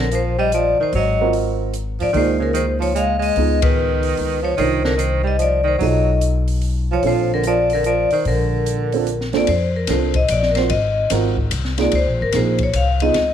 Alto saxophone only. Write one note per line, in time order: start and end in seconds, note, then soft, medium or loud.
0.00 0.11 D3 medium
0.12 0.37 F3 medium
0.38 0.52 G3 medium
0.54 0.78 F3 medium
0.80 0.93 D#3 medium
0.95 1.32 F#3 medium
2.00 2.12 F3 medium
2.13 2.39 D#3 medium
2.39 2.53 C#3 medium
2.53 2.66 D#3 medium
2.79 2.94 F3 medium
2.94 3.19 G#3 medium
3.19 3.59 G#3 medium
3.62 4.40 D#3 medium
4.42 4.56 F3 medium
4.57 4.83 D#3 medium
4.84 4.96 D3 medium
4.97 5.23 D#3 medium
5.23 5.38 G3 medium
5.38 5.63 F3 medium
5.63 5.78 D#3 medium
5.78 6.18 F#3 medium
6.92 7.04 F3 medium
7.06 7.30 F3 medium
7.34 7.46 D3 medium
7.47 7.71 F3 medium
7.74 7.85 D3 medium
7.86 8.10 F3 medium
8.12 8.25 D#3 medium
8.27 9.31 D3 medium